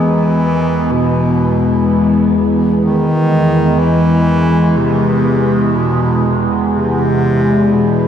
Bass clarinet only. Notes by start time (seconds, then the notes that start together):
Already playing: E3
0.92 B2
2.84 D#3
3.79 E3
4.77 C3
5.76 B2
6.74 C3
7.72 B2